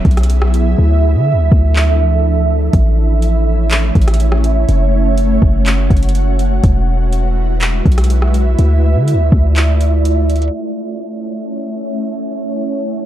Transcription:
Already playing: F#3 B3 E4 G#4 E5
0.05 B1, kick, closed hi-hat
0.11 closed hi-hat
0.17 cross-stick, closed hi-hat
0.23 closed hi-hat
0.30 closed hi-hat
0.42 cross-stick
0.54 closed hi-hat
0.78 D2 F3 D4 A4
1.15 D3
1.33 D2
1.52 D2, kick
1.76 clap
2.73 A1 A3 C#4 E4 C#5 E5, kick, closed hi-hat
3.22 closed hi-hat
3.71 clap, closed hi-hat
3.95 A1, kick, closed hi-hat
4.02 closed hi-hat
4.08 cross-stick, closed hi-hat
4.14 closed hi-hat
4.20 closed hi-hat
4.32 cross-stick
4.44 closed hi-hat
4.69 F#1 F#4 F#5, closed hi-hat
5.18 closed hi-hat
5.42 F#1, kick
5.66 clap, closed hi-hat
5.90 F#1, kick, closed hi-hat
5.97 closed hi-hat
6.03 closed hi-hat
6.09 closed hi-hat
6.15 closed hi-hat
6.39 closed hi-hat
6.64 E1 G#3 E4 F#4 B4 E5, kick, closed hi-hat
7.13 closed hi-hat
7.61 clap, closed hi-hat
7.86 B1, kick, closed hi-hat
7.92 closed hi-hat
7.98 cross-stick, closed hi-hat
8.04 closed hi-hat
8.10 closed hi-hat
8.22 cross-stick
8.34 closed hi-hat
8.59 D2 A3 F4 D5, closed hi-hat
8.95 D3
9.08 closed hi-hat
9.14 D2
9.32 D2, kick
9.56 clap, closed hi-hat
9.81 closed hi-hat
10.05 closed hi-hat
10.30 closed hi-hat
10.36 closed hi-hat
10.42 closed hi-hat
10.48 closed hi-hat
10.54 A3 C#4 E4 C#5 E5
12.49 F#4 F#5

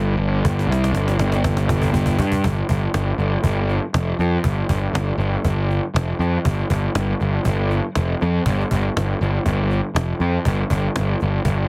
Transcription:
Already playing: G1
0.17 G1
0.45 G1, cajon bass, cajon slap
0.59 cajon slap
0.67 C2
0.72 cajon slap
0.84 cajon slap
0.92 G1, cajon slap
1.08 cajon slap
1.19 G1, cajon slap
1.32 cajon slap
1.44 G1, cajon bass, cajon slap
1.57 cajon slap
1.69 cajon bass
1.82 cajon bass
1.93 G1, cajon bass
2.06 cajon bass
2.18 G2, cajon bass
2.32 cajon bass
2.44 G1, cajon bass
2.69 G1, cajon bass
2.94 G1, cajon slap
3.18 G1, cajon slap
3.43 G1, cajon bass, cajon slap
3.69 cajon slap
3.94 F1, cajon slap
4.19 F2, cajon slap
4.44 G1, cajon bass
4.69 G1, cajon bass
4.93 G1, cajon slap
5.18 G1, cajon slap
5.44 G1, cajon bass, cajon slap
5.70 cajon slap
5.94 F1, cajon slap
6.19 F2, cajon slap
6.45 G1, cajon bass
6.70 G1, cajon bass
6.95 G1, cajon slap
7.20 G1, cajon slap
7.44 G1, cajon bass, cajon slap
7.71 cajon slap
7.95 F1, cajon slap
8.21 F2, cajon slap
8.46 G1, cajon bass
8.61 cajon slap
8.71 G1, cajon bass
8.96 G1, cajon slap
9.21 G1, cajon slap
9.46 G1, cajon bass, cajon slap
9.70 cajon slap
9.95 F1, cajon slap
10.20 F2, cajon slap
10.45 G1, cajon bass
10.70 G1, cajon bass
10.96 G1, cajon slap
11.20 G1, cajon slap
11.45 G1, cajon bass, cajon slap

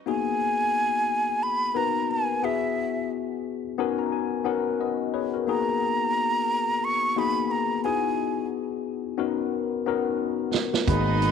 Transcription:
0.06 A#3 B3 D#4 F#4 G#4 G#5
1.43 B5
1.74 B3 D#4 F#4 A#4 B4 A#5
2.11 G#5
2.42 B3 E4 F#4 G#4 E5
3.78 B3 C#4 D#4 F#4 A#4 G#5
3.99 A#5
4.12 G#5
4.44 B3 C#4 D#4 F#4 A#4 F#5
4.81 B4 D#5
5.14 G#4 B4 C#5
5.34 F#4 A#4
5.47 A#3 B3 D#4 F#4 G#4 A#5
6.84 C#6
7.16 A#3 B3 D#4 F#4 G#4 B5
7.51 A#5
7.84 B3 D#4 E4 F#4 G#4 G#5
9.18 B3 C#4 D#4 F#4 A#4
9.86 B3 C#4 D#4 F#4 A#4
10.54 snare
10.74 snare
10.87 G#1 D#3 A#3 B3 D#4 F#4 G#4 D#5 B5, kick, closed hi-hat
11.22 closed hi-hat

